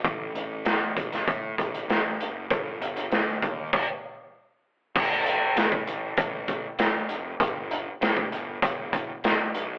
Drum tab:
CC |----------------|--------x-------|x---------------|----------------|
HH |x-x-x-xxx-xxx-x-|x-xxx-x---------|--x-x-x-x-x-x-x-|x-x-x-x-x-x-x-x-|
SD |----o--o----o---|----o-----------|----o-------o---|----o-------o---|
BD |o-----o-o-o-----|o-----o-o-------|o----o--o-o-----|o----o--o-o-----|